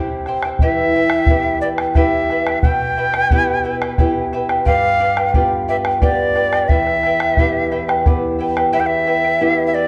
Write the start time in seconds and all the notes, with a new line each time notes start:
Already playing: C3 C4 E4 G4 C5 E5 G5
0.26 E4 C5 E5 G5, bombo rim
0.43 E4 C5 G5, bombo rim
0.59 E3 E4 G4 B4 E5 G5, bombo low
0.94 E4 B4 E5 G5
1.10 E4 B4 G5, bombo rim
1.26 B3 E4 G4 B4 E5 G5, bombo low
1.61 E4 B4 D5 E5 G5
1.78 E4 B4 G5, bombo rim
1.94 B3 E4 G4 B4 E5 G5, bombo rim, bombo low
2.30 E4 B4 E5 G5, bombo rim
2.47 E4 B4 G5, bombo rim
2.62 B2 E4 B4 E5 G5, bombo low
2.97 E4 B4 E5 G5
3.14 E4 B4 G5, bombo rim
3.31 B3 E4 G4 B4 E5 G5, bombo low
3.63 E4 B4 E5 G5
3.81 E4 B4 G5, bombo rim
3.98 B3 E4 G4 B4 E5 G5, bombo rim, bombo low
4.33 E4 B4 E5 G5, bombo rim
4.49 E4 B4 G5, bombo rim
4.65 G2 F4 G4 B4 D5 F5 G5, bombo low
4.99 F4 B4 D5 G5
5.17 F4 B4 G5, bombo rim
5.34 B3 F4 G4 B4 D5 G5, bombo low
5.68 F4 B4 D5 E5 G5
5.85 F4 B4 G5, bombo rim
6.02 B3 F4 G4 B4 D5 G5, bombo rim, bombo low
6.35 F4 B4 D5 G5, bombo rim
6.53 F4 B4 G5, bombo rim
6.68 E2 E4 B4 E5 G5, bombo low
6.87 bombo rim
7.03 E4 B4 E5 G5, bombo rim
7.20 E4 B4 G5, bombo rim
7.37 B3 E4 G4 B4 E5 G5, bombo rim, bombo low
7.71 E4 B4 E5 G5, bombo rim
7.88 E4 B4 G5, bombo rim
8.06 B3 E4 G4 B4 E5 G5, bombo rim, bombo low
8.39 E4 B4 E5 G5
8.57 E4 B4 G5, bombo rim
8.72 E2 E4 G4 B4 E5 G5
8.80 G5
8.87 E5
9.06 E4 B4 E5 G5
9.24 E4 B4 G5
9.40 B3 E4 G4 B4 E5 G5
9.67 E5
9.74 E4 B4 D5 E5 G5